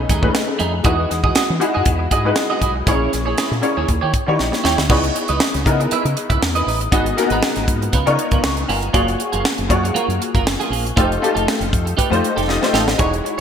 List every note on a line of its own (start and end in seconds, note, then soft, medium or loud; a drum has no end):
0.00 0.22 A3 medium
0.00 0.22 C#4 medium
0.00 0.22 D#4 medium
0.00 0.23 G#4 medium
0.00 0.23 B4 medium
0.09 0.29 D#2 medium
0.09 0.25 A3 medium
0.09 0.23 D#4 medium
0.09 0.22 G#4 medium
0.09 kick medium
0.09 closed hi-hat medium
0.22 0.77 A3 medium
0.22 0.77 C#4 medium
0.22 0.78 D#4 medium
0.22 0.78 G#4 medium
0.22 0.78 B4 medium
0.22 muted clean electric guitar stroke soft
0.22 kick medium
0.35 snare loud
0.35 closed hi-hat medium
0.48 muted clean electric guitar stroke soft
0.59 0.80 F2 medium
0.59 0.75 A3 medium
0.59 0.73 D#4 medium
0.59 0.72 G#4 medium
0.59 closed hi-hat medium
0.73 muted clean electric guitar stroke soft
0.83 1.05 E2 medium
0.83 1.51 G#3 medium
0.83 1.52 D#4 medium
0.83 1.52 E4 medium
0.83 1.08 F#4 medium
0.83 1.52 F#4 medium
0.83 1.09 G#4 medium
0.83 1.52 B4 medium
0.83 1.09 D#5 medium
0.83 kick loud
0.83 closed hi-hat medium
1.10 1.31 E2 medium
1.10 muted clean electric guitar stroke soft
1.10 snare soft
1.10 closed hi-hat medium
1.24 1.34 F#4 medium
1.24 1.35 G#4 medium
1.24 1.34 D#5 medium
1.24 kick medium
1.35 1.51 F#4 medium
1.35 1.49 G#4 medium
1.35 1.48 D#5 medium
1.35 muted fingered electric bass stroke soft
1.35 snare loud
1.35 closed hi-hat medium
1.49 1.59 E3 medium
1.49 muted clean electric guitar stroke soft
1.60 2.16 G#3 medium
1.60 2.16 D#4 medium
1.60 2.16 E4 medium
1.60 2.16 F#4 medium
1.60 2.17 G#4 medium
1.60 muted clean electric guitar stroke soft
1.60 closed hi-hat medium
1.74 1.85 F#2 medium
1.74 1.86 F#4 medium
1.74 1.85 G#4 medium
1.74 1.85 D#5 medium
1.85 2.06 E2 medium
1.85 kick medium
1.85 closed hi-hat medium
1.99 muted clean electric guitar stroke soft
2.11 2.31 G#2 medium
2.11 2.27 F#4 medium
2.11 2.25 G#4 medium
2.11 2.23 D#5 medium
2.11 kick medium
2.11 closed hi-hat medium
2.25 2.80 G#3 medium
2.25 2.80 D#4 medium
2.25 2.80 E4 medium
2.25 2.80 F#4 medium
2.25 2.80 B4 medium
2.25 muted clean electric guitar stroke soft
2.36 muted clean electric guitar stroke soft
2.36 snare loud
2.36 closed hi-hat medium
2.50 2.60 F#4 medium
2.50 2.61 G#4 medium
2.50 2.61 D#5 medium
2.61 2.82 B1 medium
2.61 2.74 F#4 medium
2.61 2.74 G#4 medium
2.61 2.74 D#5 medium
2.61 kick medium
2.61 closed hi-hat medium
2.76 muted clean electric guitar stroke medium
2.86 3.07 A#1 medium
2.86 3.54 A#3 medium
2.86 3.54 C#4 medium
2.86 3.54 E4 medium
2.86 3.11 E4 medium
2.86 3.54 G#4 medium
2.86 3.11 G#4 medium
2.86 3.55 C#5 medium
2.86 3.11 C#5 medium
2.86 kick loud
2.86 closed hi-hat medium
3.12 3.33 A#1 medium
3.12 muted clean electric guitar stroke soft
3.12 snare soft
3.12 closed hi-hat medium
3.26 3.36 E4 soft
3.26 3.37 G#4 medium
3.26 3.36 C#5 medium
3.37 3.53 E4 medium
3.37 3.51 G#4 medium
3.37 3.50 C#5 medium
3.37 muted fingered electric bass stroke soft
3.37 snare loud
3.37 closed hi-hat medium
3.51 3.61 A#2 medium
3.51 muted clean electric guitar stroke soft
3.51 snare soft
3.61 3.88 A#3 medium
3.61 3.88 C#4 medium
3.61 3.88 E4 medium
3.61 3.88 G#4 medium
3.61 3.88 C#5 medium
3.61 muted clean electric guitar stroke soft
3.61 closed hi-hat medium
3.77 3.86 D#2 medium
3.77 3.87 E4 soft
3.77 3.88 G#4 medium
3.77 3.87 C#5 medium
3.88 3.99 D#2 medium
3.88 muted clean electric guitar stroke soft
3.88 kick medium
3.88 closed hi-hat medium
4.01 4.12 D#3 medium
4.01 4.12 E4 medium
4.01 4.12 G4 medium
4.01 4.13 C#5 medium
4.13 muted clean electric guitar stroke soft
4.13 kick medium
4.13 closed hi-hat medium
4.27 4.37 D#3 medium
4.27 4.82 A#3 medium
4.27 4.82 D#4 medium
4.27 4.82 E4 medium
4.27 4.83 G4 medium
4.27 4.83 C#5 medium
4.27 muted clean electric guitar stroke soft
4.39 4.50 A#1 medium
4.39 snare medium
4.52 muted clean electric guitar stroke soft
4.52 snare medium
4.64 4.75 D#2 medium
4.64 4.79 E4 medium
4.64 4.78 G4 medium
4.64 4.77 C#5 medium
4.64 snare medium
4.78 4.87 D2 medium
4.78 muted clean electric guitar stroke soft
4.78 snare medium
4.89 5.09 C#2 loud
4.89 5.57 B3 medium
4.89 5.56 D#4 medium
4.89 5.05 E4 medium
4.89 5.57 E4 medium
4.89 5.57 G#4 medium
4.89 5.03 B4 medium
4.89 5.57 C#5 medium
4.89 5.03 D#5 medium
4.89 kick loud
4.89 crash medium
5.04 muted clean electric guitar stroke soft
5.04 closed hi-hat soft
5.15 muted clean electric guitar stroke soft
5.15 closed hi-hat medium
5.28 5.38 C#2 medium
5.28 5.40 E4 soft
5.28 5.40 B4 soft
5.28 5.39 D#5 medium
5.28 closed hi-hat medium
5.40 muted clean electric guitar stroke soft
5.40 snare loud
5.54 5.63 C#2 medium
5.54 muted clean electric guitar stroke soft
5.54 snare soft
5.54 closed hi-hat soft
5.65 5.86 C#3 medium
5.65 6.55 B3 medium
5.65 6.55 D#4 medium
5.65 6.55 E4 medium
5.65 6.55 G#4 medium
5.65 6.55 A#4 medium
5.65 kick medium
5.65 closed hi-hat medium
5.80 muted clean electric guitar stroke soft
5.80 closed hi-hat soft
5.91 6.06 E4 medium
5.91 6.05 B4 medium
5.91 6.05 E5 medium
5.91 muted fingered electric bass stroke soft
5.91 closed hi-hat medium
6.05 6.14 C#3 loud
6.05 muted clean electric guitar stroke soft
6.05 closed hi-hat soft
6.17 muted clean electric guitar stroke soft
6.17 closed hi-hat medium
6.30 6.39 C#2 medium
6.30 6.40 E4 soft
6.30 6.40 B4 medium
6.30 6.40 E5 medium
6.30 kick medium
6.30 closed hi-hat soft
6.41 6.62 E2 medium
6.41 muted clean electric guitar stroke soft
6.41 snare loud
6.55 6.66 E4 medium
6.55 6.66 B4 medium
6.55 6.67 D#5 medium
6.55 closed hi-hat medium
6.67 6.86 A1 medium
6.67 6.79 E4 medium
6.67 6.79 B4 medium
6.67 6.80 D#5 medium
6.67 open hi-hat medium
6.81 muted clean electric guitar stroke medium
6.81 closed hi-hat soft
6.91 7.12 G#1 medium
6.91 7.14 B3 medium
6.91 7.14 D#4 medium
6.91 7.07 D#4 medium
6.91 7.14 F#4 medium
6.91 7.06 F#4 medium
6.91 7.15 G#4 medium
6.91 7.05 B4 medium
6.91 7.15 D#5 medium
6.91 kick loud
6.91 closed hi-hat medium
7.06 muted clean electric guitar stroke soft
7.06 closed hi-hat soft
7.16 7.24 A#3 medium
7.16 7.93 D#4 medium
7.16 7.93 F#4 medium
7.16 7.93 G#4 medium
7.16 7.94 A#4 medium
7.16 muted clean electric guitar stroke soft
7.16 snare soft
7.16 closed hi-hat medium
7.23 7.96 B3 loud
7.30 7.40 G#1 medium
7.30 7.42 D#4 soft
7.30 7.42 F#4 medium
7.30 7.42 B4 medium
7.30 closed hi-hat medium
7.43 muted clean electric guitar stroke soft
7.43 snare loud
7.56 7.66 G#1 medium
7.56 muted clean electric guitar stroke medium
7.56 snare soft
7.56 closed hi-hat medium
7.68 7.88 G#2 medium
7.68 kick medium
7.68 closed hi-hat medium
7.82 muted clean electric guitar stroke soft
7.82 closed hi-hat soft
7.93 8.04 C#2 loud
7.93 8.08 B3 medium
7.93 8.07 F4 medium
7.93 8.07 B4 medium
7.93 kick medium
7.93 closed hi-hat medium
8.06 8.16 C#3 loud
8.06 8.39 B3 medium
8.06 8.39 D#4 medium
8.06 8.39 F4 medium
8.06 8.39 A#4 medium
8.06 8.39 C#5 loud
8.06 muted clean electric guitar stroke soft
8.06 closed hi-hat medium
8.19 muted clean electric guitar stroke soft
8.19 closed hi-hat medium
8.31 8.41 C#2 medium
8.31 8.44 B3 medium
8.31 8.43 F4 medium
8.31 8.43 A#4 medium
8.31 kick medium
8.31 closed hi-hat soft
8.43 8.63 C#2 medium
8.43 8.68 A#5 medium
8.43 8.68 C#6 medium
8.43 snare loud
8.57 muted clean electric guitar stroke soft
8.57 closed hi-hat medium
8.68 8.89 G1 medium
8.68 8.84 B3 medium
8.68 8.82 F4 medium
8.68 8.81 A#4 medium
8.68 9.17 F5 medium
8.68 9.17 G#5 medium
8.68 open hi-hat medium
8.82 muted clean electric guitar stroke soft
8.82 closed hi-hat soft
8.93 9.14 F#1 loud
8.93 9.61 A#3 medium
8.93 9.09 A#3 medium
8.93 9.61 F4 medium
8.93 9.07 F4 medium
8.93 9.61 F#4 medium
8.93 9.62 G#4 medium
8.93 9.06 G#4 medium
8.93 9.61 C#5 medium
8.93 kick loud
8.93 closed hi-hat medium
9.07 muted clean electric guitar stroke soft
9.07 closed hi-hat soft
9.19 muted clean electric guitar stroke soft
9.19 closed hi-hat medium
9.32 9.43 F#1 medium
9.32 9.43 A#3 medium
9.32 9.44 F4 medium
9.32 9.43 G#4 medium
9.32 closed hi-hat medium
9.44 muted clean electric guitar stroke soft
9.44 snare loud
9.58 9.68 F#1 medium
9.58 muted clean electric guitar stroke soft
9.58 closed hi-hat soft
9.69 9.90 F#2 medium
9.69 10.59 A#3 medium
9.69 10.59 F4 medium
9.69 10.60 F#4 medium
9.69 10.60 G#4 medium
9.69 10.60 C#5 medium
9.69 kick medium
9.69 closed hi-hat medium
9.84 muted clean electric guitar stroke medium
9.84 closed hi-hat medium
9.95 10.11 A#3 medium
9.95 10.09 F4 medium
9.95 10.09 A#4 medium
9.95 muted fingered electric bass stroke soft
9.95 closed hi-hat medium
10.08 10.18 F#2 medium
10.08 muted clean electric guitar stroke soft
10.08 closed hi-hat soft
10.21 muted clean electric guitar stroke soft
10.21 closed hi-hat medium
10.35 10.55 F#1 medium
10.35 10.45 A#3 medium
10.35 10.45 F4 medium
10.35 10.45 A#4 medium
10.35 kick medium
10.35 closed hi-hat soft
10.46 muted clean electric guitar stroke soft
10.46 snare loud
10.60 10.70 A#3 medium
10.60 10.71 F4 medium
10.60 10.71 G#4 medium
10.60 closed hi-hat soft
10.70 10.91 A#1 medium
10.70 10.84 A#3 medium
10.70 10.84 F4 medium
10.70 10.84 G#4 medium
10.70 open hi-hat medium
10.85 muted clean electric guitar stroke soft
10.85 closed hi-hat soft
10.96 11.17 F1 loud
10.96 11.19 A3 medium
10.96 11.19 D#4 medium
10.96 11.12 D#4 medium
10.96 11.19 F4 medium
10.96 11.19 G4 medium
10.96 11.10 G4 medium
10.96 11.09 A4 medium
10.96 11.19 C5 medium
10.96 kick loud
10.96 closed hi-hat medium
11.10 muted clean electric guitar stroke soft
11.10 closed hi-hat soft
11.22 12.00 A3 medium
11.22 12.00 D#4 medium
11.22 12.00 F4 medium
11.22 12.00 G4 medium
11.22 12.00 A4 loud
11.22 muted clean electric guitar stroke soft
11.22 closed hi-hat medium
11.35 11.45 F1 medium
11.35 11.46 D#4 soft
11.35 11.46 G4 medium
11.35 11.46 A4 medium
11.35 closed hi-hat soft
11.47 muted clean electric guitar stroke soft
11.47 snare loud
11.60 11.70 F1 medium
11.60 muted clean electric guitar stroke soft
11.60 closed hi-hat medium
11.73 11.93 F2 medium
11.73 kick medium
11.73 closed hi-hat medium
11.86 muted clean electric guitar stroke soft
11.86 closed hi-hat medium
11.97 12.13 D#4 medium
11.97 12.10 G4 medium
11.97 12.10 B4 medium
11.97 muted fingered electric bass stroke soft
11.97 kick medium
11.97 closed hi-hat medium
12.10 12.21 F2 medium
12.10 12.43 A3 medium
12.10 12.44 D#4 medium
12.10 12.44 F4 medium
12.10 12.44 G4 medium
12.10 12.44 C5 medium
12.10 muted clean electric guitar stroke soft
12.10 closed hi-hat soft
12.23 muted clean electric guitar stroke soft
12.23 closed hi-hat medium
12.36 12.57 F1 medium
12.36 12.48 D#4 medium
12.36 12.47 G4 medium
12.36 12.47 A4 medium
12.36 closed hi-hat soft
12.47 12.60 A3 medium
12.47 12.60 D#4 medium
12.47 12.60 F4 medium
12.47 12.60 G4 medium
12.47 12.61 D#5 medium
12.47 snare medium
12.61 12.95 A3 medium
12.61 12.95 D#4 medium
12.61 12.95 F4 medium
12.61 12.95 G4 medium
12.61 12.95 C5 medium
12.61 muted clean electric guitar stroke soft
12.61 snare medium
12.73 12.93 A1 medium
12.73 12.89 D#4 medium
12.73 12.87 G4 medium
12.73 12.86 A4 medium
12.73 snare medium
12.87 muted clean electric guitar stroke soft
12.87 snare medium
12.98 13.19 E1 loud
12.98 13.40 G#3 medium
12.98 13.14 D#4 medium
12.98 13.40 D#4 medium
12.98 13.40 E4 medium
12.98 13.40 F#4 medium
12.98 13.12 G#4 medium
12.98 13.11 C#5 medium
12.98 13.40 C#5 medium
12.98 kick loud
12.98 closed hi-hat medium
13.12 muted clean electric guitar stroke soft
13.12 closed hi-hat soft
13.24 muted clean electric guitar stroke soft
13.24 closed hi-hat medium